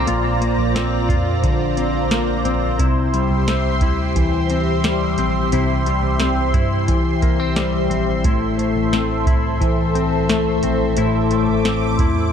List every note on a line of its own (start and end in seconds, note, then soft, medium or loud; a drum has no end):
0.00 1.42 D3 medium
0.00 0.74 C4 soft
0.00 2.76 F4 medium
0.00 12.32 C5 medium
0.00 2.76 D5 medium
0.00 2.76 A#5 medium
0.07 0.55 A#1 medium
0.07 2.79 A#2 medium
0.07 1.08 F4 medium
0.07 closed hi-hat medium
0.41 2.10 A#3 soft
0.41 closed hi-hat soft
0.58 1.06 A#1 medium
0.75 1.77 C4 medium
0.75 snare medium
0.75 closed hi-hat medium
1.09 1.41 F2 medium
1.09 2.79 F4 medium
1.09 kick medium
1.09 closed hi-hat soft
1.43 2.41 A#1 loud
1.43 2.86 D3 medium
1.43 kick medium
1.43 closed hi-hat medium
1.77 2.45 C4 soft
1.77 closed hi-hat soft
2.11 2.86 A#3 medium
2.11 snare medium
2.11 closed hi-hat medium
2.45 2.78 A#1 medium
2.45 3.48 C4 soft
2.45 closed hi-hat soft
2.79 3.28 C2 medium
2.79 5.52 C3 medium
2.79 3.82 E4 medium
2.79 8.21 G4 medium
2.79 12.32 E5 medium
2.79 10.94 C6 medium
2.79 kick medium
2.79 closed hi-hat medium
3.13 4.84 G3 medium
3.13 closed hi-hat soft
3.31 3.79 C2 medium
3.48 4.50 C4 soft
3.48 snare loud
3.48 closed hi-hat medium
3.81 5.14 D2 medium
3.81 5.53 E4 medium
3.81 kick medium
3.81 closed hi-hat soft
4.16 6.87 E3 medium
4.16 kick medium
4.16 closed hi-hat medium
4.50 5.18 C4 medium
4.50 closed hi-hat soft
4.84 5.85 G3 medium
4.84 snare loud
4.84 closed hi-hat medium
5.18 5.50 A#1 medium
5.18 6.20 C4 soft
5.18 closed hi-hat soft
5.52 6.00 C2 medium
5.52 8.24 C3 medium
5.52 6.53 E4 medium
5.52 closed hi-hat medium
5.86 7.55 G3 soft
5.86 closed hi-hat soft
6.03 6.52 C2 medium
6.20 7.22 C4 soft
6.20 snare medium
6.20 closed hi-hat medium
6.54 6.88 G2 medium
6.54 8.25 E4 medium
6.54 kick medium
6.54 closed hi-hat soft
6.88 7.87 C2 medium
6.88 9.60 E3 medium
6.88 kick medium
6.88 closed hi-hat medium
7.22 7.40 A#3 soft
7.22 kick medium
7.22 closed hi-hat soft
7.40 7.89 C4 soft
7.56 8.31 G3 medium
7.56 snare loud
7.56 closed hi-hat medium
7.90 8.23 A#1 medium
7.90 8.92 C4 soft
7.90 closed hi-hat soft
8.24 8.73 A1 medium
8.24 10.96 A2 medium
8.24 9.26 E4 medium
8.24 12.32 A4 medium
8.24 kick medium
8.24 closed hi-hat medium
8.58 10.28 A3 soft
8.58 closed hi-hat soft
8.76 9.25 A1 medium
8.92 9.94 C4 soft
8.92 snare medium
8.92 closed hi-hat medium
9.26 10.59 C2 medium
9.26 10.97 E4 medium
9.26 kick medium
9.26 closed hi-hat soft
9.61 12.32 E3 medium
9.61 kick medium
9.61 closed hi-hat medium
9.95 10.62 C4 soft
9.95 closed hi-hat soft
10.29 11.30 A3 medium
10.29 snare medium
10.29 closed hi-hat medium
10.63 10.96 A#1 medium
10.63 11.64 C4 soft
10.63 closed hi-hat soft
10.97 11.46 A1 medium
10.97 12.32 A2 medium
10.97 11.99 E4 medium
10.97 12.32 D6 medium
10.97 closed hi-hat medium
11.31 12.32 A3 soft
11.31 closed hi-hat soft
11.49 11.97 A1 medium
11.65 12.32 C4 medium
11.65 snare medium
11.65 closed hi-hat medium
11.99 12.32 E2 medium
11.99 12.32 E4 medium
11.99 kick medium
11.99 closed hi-hat soft